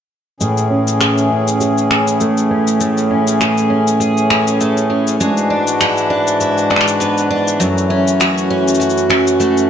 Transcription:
0.40 2.79 A2 medium
0.40 5.17 A2 medium
0.40 9.70 E3 medium
0.40 5.16 C#4 medium
0.40 5.16 G#4 medium
0.40 cabasa soft
0.58 cabasa soft
0.70 1.29 C#4 soft
0.88 cabasa medium
1.00 1.60 G#4 medium
1.00 finger snap medium
1.00 cabasa soft
1.18 cabasa soft
1.30 1.89 C#4 soft
1.48 cabasa medium
1.60 3.40 G#4 medium
1.60 cabasa soft
1.78 cabasa soft
1.90 2.50 C#4 soft
1.90 finger snap medium
2.08 cabasa medium
2.21 4.59 A3 medium
2.21 cabasa soft
2.38 cabasa soft
2.51 3.09 C#4 medium
2.67 cabasa medium
2.81 5.20 A2 medium
2.81 cabasa soft
2.98 cabasa soft
3.11 3.69 C#4 soft
3.28 cabasa medium
3.41 4.00 G#4 medium
3.41 finger snap medium
3.41 cabasa soft
3.58 cabasa soft
3.70 4.29 C#4 medium
3.88 cabasa medium
4.00 5.53 G#4 medium
4.00 cabasa soft
4.18 cabasa soft
4.30 4.89 C#4 medium
4.30 finger snap medium
4.47 cabasa medium
4.60 5.27 A3 medium
4.60 cabasa soft
4.77 cabasa soft
4.90 5.27 C#4 medium
5.07 cabasa medium
5.20 7.58 G#2 medium
5.20 7.60 G#3 medium
5.20 7.58 D4 medium
5.20 9.70 F#4 medium
5.20 cabasa medium
5.37 cabasa soft
5.50 6.09 D4 medium
5.67 cabasa medium
5.81 6.40 E4 medium
5.81 finger snap medium
5.81 cabasa soft
5.98 cabasa soft
6.10 6.69 D4 medium
6.27 cabasa medium
6.40 8.20 E4 medium
6.40 cabasa soft
6.58 cabasa soft
6.70 7.29 D4 medium
6.70 finger snap soft
6.76 finger snap soft
6.81 finger snap soft
6.88 cabasa medium
7.00 7.67 B3 medium
7.00 cabasa soft
7.18 cabasa soft
7.30 7.67 D4 medium
7.48 cabasa medium
7.60 9.70 F#2 medium
7.60 9.70 A3 medium
7.60 cabasa soft
7.78 cabasa soft
7.90 8.50 C#4 medium
8.08 cabasa medium
8.20 8.79 F#4 medium
8.20 finger snap medium
8.20 cabasa soft
8.38 cabasa soft
8.50 9.09 C#4 medium
8.68 cabasa medium
8.75 cabasa soft
8.80 9.70 F#4 medium
8.80 cabasa medium
8.90 cabasa soft
8.98 cabasa soft
9.10 9.69 C#4 medium
9.10 finger snap medium
9.27 cabasa medium
9.40 9.70 A3 medium
9.40 cabasa soft
9.58 cabasa soft

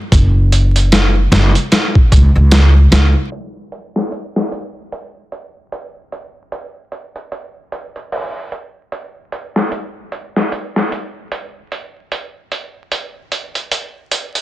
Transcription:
0.12 1.29 F#1 loud
0.12 kick loud
0.12 closed hi-hat medium
0.52 closed hi-hat medium
0.76 closed hi-hat soft
0.92 snare loud
0.92 closed hi-hat medium
1.32 1.52 F#1 loud
1.32 snare loud
1.32 closed hi-hat medium
1.55 closed hi-hat soft
1.72 snare loud
1.72 closed hi-hat medium
1.95 kick loud
2.12 2.32 C#2 loud
2.12 kick medium
2.12 closed hi-hat medium
2.35 2.88 C#2 loud
2.51 snare loud
2.51 closed hi-hat medium
2.92 3.12 C#2 medium
2.92 snare loud
2.92 closed hi-hat medium
3.32 closed hi-hat medium
3.72 closed hi-hat medium
3.96 snare soft
4.12 closed hi-hat medium
4.36 snare soft
4.52 closed hi-hat medium
4.92 closed hi-hat medium
5.32 closed hi-hat medium
5.72 closed hi-hat medium
6.12 closed hi-hat medium
6.52 closed hi-hat medium
6.92 closed hi-hat medium
7.16 closed hi-hat soft
7.32 closed hi-hat medium
7.72 closed hi-hat medium
7.96 closed hi-hat soft
8.12 open hi-hat medium
8.52 closed hi-hat medium
8.92 closed hi-hat medium
9.32 closed hi-hat medium
9.56 snare soft
9.72 closed hi-hat medium
10.12 closed hi-hat medium
10.36 snare soft
10.52 closed hi-hat medium
10.76 snare soft
10.92 closed hi-hat medium
11.32 closed hi-hat medium
11.72 closed hi-hat medium
12.12 closed hi-hat medium
12.52 closed hi-hat medium
12.92 closed hi-hat medium
13.32 closed hi-hat medium
13.55 closed hi-hat soft
13.72 closed hi-hat medium
14.12 closed hi-hat medium
14.35 closed hi-hat soft

